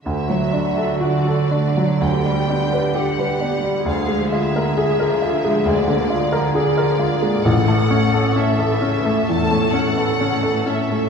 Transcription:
<<
  \new Staff \with { instrumentName = "Violin section" } { \time 4/4 \key d \major \tempo 4 = 66 e''4 d''4 g''4 fis''4 | f''8 e''4. d''4 d''4 | fis''4 e''4 a''8 fis''4 e''8 | }
  \new Staff \with { instrumentName = "Grand piano" } { \time 4/4 \key d \major d,16 fis16 d'16 a'16 fis'16 a'16 d'16 fis16 d,16 g16 d'16 b'16 g'16 b'16 d'16 g16 | d,16 aes16 f'16 bes'16 aes'16 bes'16 f'16 aes16 d,16 d16 f'16 bes'16 aes'16 bes'16 f'16 aes16 | a,,16 a16 cis'16 a'16 cis'16 a'16 cis'16 a16 e,16 a16 cis'16 a'16 cis'16 a'16 cis'16 a16 | }
  \new Staff \with { instrumentName = "Viola section" } { \clef bass \time 4/4 \key d \major << { fis'2 g'2 | aes'1 | a'1 | } \\ { d16 fis16 a16 fis16 d16 fis16 a16 fis16 d16 g16 b16 g16 d16 g16 b16 g16 | d16 f16 aes16 bes16 aes16 f16 d16 f16 aes16 bes16 aes16 f16 d16 f16 aes16 bes16 | cis16 e16 a16 cis'16 a16 e16 cis16 e16 a16 cis'16 a16 e16 cis16 e16 a16 cis'16 | } >> }
  \new Staff \with { instrumentName = "Cello section" } { \clef bass \time 4/4 \key d \major d1 | d1 | a,1 | }
>>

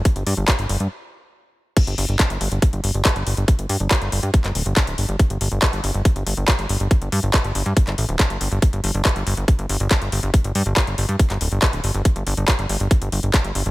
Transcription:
<<
  \new Staff \with { instrumentName = "Analog synth bass" } { \clef bass \time 4/4 \key c \dorian \tempo 4 = 140 r16 g,,16 g,16 g,,16 r16 g,,16 g,,16 g,16 r2 | r16 g,,16 g,,16 g,,16 r16 g,,16 g,,16 g,,16 r16 g,,16 g,,16 g,,16 r16 g,,16 g,,16 g,,16 | r16 g,,16 g,16 g,,16 r16 g,,16 g,,16 g,16 r16 g,,16 d,,16 g,,16 r16 d,,16 g,,16 g,,16 | r16 g,,16 g,,16 g,,16 r16 g,,16 g,,16 g,,16 r16 g,,16 g,,16 g,,16 r16 g,,16 g,,16 g,,16 |
r16 g,,16 g,16 g,,16 r16 g,,16 g,,16 g,16 r16 g,,16 a,,16 d,,16 r16 g,,16 g,,16 g,,16 | r16 g,,16 g,,16 g,,16 r16 g,,16 g,,16 g,,16 r16 g,,16 g,,16 g,,16 r16 g,,16 g,,16 g,,16 | r16 g,,16 g,16 g,,16 r16 g,,16 g,,16 g,16 r16 g,,16 d,,16 g,,16 r16 d,,16 g,,16 g,,16 | r16 g,,16 g,,16 g,,16 r16 g,,16 g,,16 g,,16 r16 g,,16 g,,16 g,,16 r16 g,,16 g,,16 g,,16 | }
  \new DrumStaff \with { instrumentName = "Drums" } \drummode { \time 4/4 <hh bd>16 hh16 hho16 hh16 <hc hh bd>16 hh16 hho16 hh16 r4 r4 | <cymc hh bd>16 hh16 hho16 hh16 <hc hh bd>16 hh16 hho16 hh16 <hh bd>16 hh16 hho16 hh16 <hc hh bd>16 hh16 hho16 hh16 | <hh bd>16 hh16 hho16 hh16 <hc hh bd>16 hh16 hho16 hh16 <hh bd>16 <hc hh>16 hho16 hh16 <hc hh bd>16 hh16 hho16 hh16 | <hh bd>16 hh16 hho16 hh16 <hc hh bd>16 hh16 hho16 hh16 <hh bd>16 hh16 hho16 hh16 <hc hh bd>16 hh16 hho16 hh16 |
<hh bd>16 hh16 hho16 hh16 <hc hh bd>16 hh16 hho16 hh16 <hh bd>16 <hc hh>16 hho16 hh16 <hc hh bd>16 hh16 hho16 hh16 | <hh bd>16 hh16 hho16 hh16 <hc hh bd>16 hh16 hho16 hh16 <hh bd>16 hh16 hho16 hh16 <hc hh bd>16 hh16 hho16 hh16 | <hh bd>16 hh16 hho16 hh16 <hc hh bd>16 hh16 hho16 hh16 <hh bd>16 <hc hh>16 hho16 hh16 <hc hh bd>16 hh16 hho16 hh16 | <hh bd>16 hh16 hho16 hh16 <hc hh bd>16 hh16 hho16 hh16 <hh bd>16 hh16 hho16 hh16 <hc hh bd>16 hh16 hho16 hh16 | }
>>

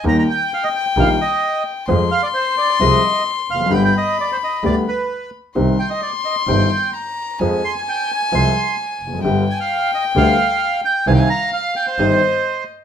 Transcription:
<<
  \new Staff \with { instrumentName = "Violin" } { \time 4/4 \key c \minor \tempo 4 = 131 g''1 | c'''1 | b''2.~ b''8 r8 | c'''2. bes''4 |
aes''1 | g''1 | f''2 ees''4. r8 | }
  \new Staff \with { instrumentName = "Bandoneon" } { \time 4/4 \key c \minor bes''16 bes''16 g''8 f''16 ees''16 g''8 f''8 ees''4 r8 | r8 f''16 d''16 c''8 d''8 ees''4 r8 f''8 | g''16 g''16 ees''8 d''16 c''16 ees''8 d''8 b'4 r8 | r8 g''16 ees''16 d''8 ees''8 g''4 r4 |
r8 c'''16 aes''16 g''8 aes''8 c'''4 r4 | r8 aes''16 f''8. ees''8 f''4. g''8 | aes''32 g''32 aes''16 bes''8 f''8 g''16 c''4.~ c''16 r8 | }
  \new Staff \with { instrumentName = "Upright piano" } { \clef bass \time 4/4 \key c \minor <ees, ees g bes g'>8 r4. <bes,, bes, ees g bes g'>8 r4. | <f, f aes c' aes'>8 r4. <c, c f aes c' aes'>8 r4 r32 e,32 f,32 fis,32 | <g,, g, d g b g'>8 r4. <d, d g b g'>8 r4. | <c, c ees g c' g'>8 r4. <g,, g, ees g c' g'>8 r4. |
<f, f aes c' aes'>8 r4. <c, c f aes c' aes'>8 r4 r32 e,32 f,32 fis,32 | <g,, g, d g b g'>8 r4. <d, d g b g'>8 r4. | <c, c ees g c' g'>8 r4. <g,, g, ees g c' g'>8 r4. | }
  \new Staff \with { instrumentName = "Double bass" } { \clef bass \time 4/4 \key c \minor ees,8 r4. bes,,8 r4. | f,8 r4. c,8 r4 f,,8 | g,,8 r4. d,8 r4. | c,8 r4. g,,8 r4. |
f,8 r4. c,8 r4 f,,8 | g,,8 r4. d,8 r4. | c,8 r4. g,,8 r4. | }
>>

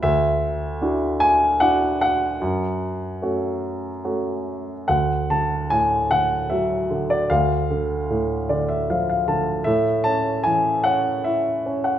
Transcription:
<<
  \new Staff \with { instrumentName = "Grand piano" } { \time 3/4 \key d \lydian \tempo 4 = 75 << { e''4. gis''8 fis''8 fis''8~ | fis''2 r4 | fis''8 a''8 gis''8 fis''8 e''8. d''16 | f''2~ f''8 r8 |
e''8 a''8 gis''8 fis''8 e''8. fis''16 | } \\ { r2. | r2. | r2. | r4. d''16 e''16 f''16 f''16 a''8 |
r2. | } >> }
  \new Staff \with { instrumentName = "Grand piano" } { \clef bass \time 3/4 \key d \lydian d,4 <d' e' fis'>4 <d' e' fis'>4 | fis,4 <a cis' fis'>4 <a cis' fis'>4 | d,8 d8 a,8 d8 fis8 d8 | d,8 d8 a,8 d8 f8 d8 |
a,8 cis'8 e8 cis'8 e'8 cis'8 | }
>>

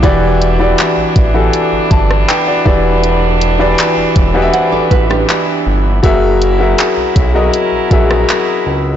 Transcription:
<<
  \new Staff \with { instrumentName = "Nylon-string guitar" } { \time 4/4 \key e \minor \tempo 4 = 80 r1 | r2 <c'' fis''>16 <a' d''>16 <fis' b'>16 <d' g'>4~ <d' g'>16 | r1 | }
  \new Staff \with { instrumentName = "Grand piano" } { \time 4/4 \key e \minor << { r2 r8 a''8 <b' g''>16 <fis' d''>8 r16 | r1 | r1 | } \\ { <e e' fis' g' d''>8. <e e' fis' g' d''>4 <e e' fis' g' a'>8. r4 <e e' fis' g' b' d''>8~ | <e e' fis' g' b' d''>8 r16 <e e' fis' g' b' d''>4 <e e' fis' g' b' dis'' e''>4.~ <e e' fis' g' b' dis'' e''>16 r8 | <fis fis' gis' ais' e''>8. <fis fis' gis' ais' e''>4 <fis fis' gis' ais' dis''>8. <fis fis' gis' ais' e''>4~ <fis fis' gis' ais' e''>16 r16 | } >> }
  \new Staff \with { instrumentName = "French horn section" } { \time 4/4 \key e \minor << { <e b e'>1~ | <e b e'>1 | <fis cis' e' gis'>1 | } \\ { <g d'>2.~ <g d'>8 g8~ | g1 | ais'1 | } >> }
  \new Staff \with { instrumentName = "Analog synth bass" } { \clef bass \time 4/4 \key e \minor e,,4 r16 a,,16 a,,8 r16 g,,16 g,,8 r8 e,,8~ | e,,4 r16 e,,16 e,,8 r16 a,,16 a,,8 r8 g,,8 | fis,,4 r16 b,,16 b,,8 r16 ais,,16 ais,,8 r8 cis,8 | }
  \new DrumStaff \with { instrumentName = "Drums" } \drummode { \time 4/4 <hh bd>8 hh8 <hc hh>8 <hh bd>8 hh8 <hh bd>16 ss16 <hc hh>8 bd8 | hh8 hh8 <hc hh>8 <hh bd>8 hh8 <hh bd>16 ss16 <hc hh>4 | <hh bd>8 hh8 <hc hh>8 <hh bd>8 hh8 <hh bd>16 ss16 <hc hh>4 | }
>>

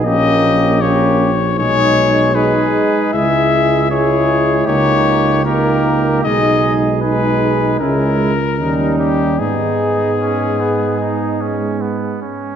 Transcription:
<<
  \new Staff \with { instrumentName = "Trumpet" } { \time 4/4 \key gis \minor \tempo 4 = 76 dis''4 des''4 cis''4 b'4 | e''4 cis''4 cis''4 ais'4 | dis''8 r8 b'4 ais'4. g'8 | gis'2. r4 | }
  \new Staff \with { instrumentName = "Trumpet" } { \time 4/4 \key gis \minor g'4 g'8 r8 gis'4 gis'4 | gis'4 gis'4 g'4 g'4 | gis'4 gis'4 e'8 r8 dis'4 | dis'4 cis'8 b8 dis'8 cis'8 b8 cis'8 | }
  \new Staff \with { instrumentName = "French horn" } { \time 4/4 \key gis \minor des'4 des'8 r8 dis'4 dis'4 | e'4 e'4 dis'4 dis'4 | dis'4 dis'4 cis'8 r8 cis'4 | b2.~ b8 r8 | }
  \new Staff \with { instrumentName = "Trombone" } { \clef bass \time 4/4 \key gis \minor bes4 bes8 r8 gis4 gis4 | gis4 gis4 ais4 ais4 | gis4 gis4 gis8 r8 g4 | gis2.~ gis8 r8 | }
  \new Staff \with { instrumentName = "Tuba" } { \clef bass \time 4/4 \key gis \minor bes,,2 b,,4. r8 | cis,2 cis,2 | b,,2 cis,4 dis,4 | gis,2.~ gis,8 r8 | }
>>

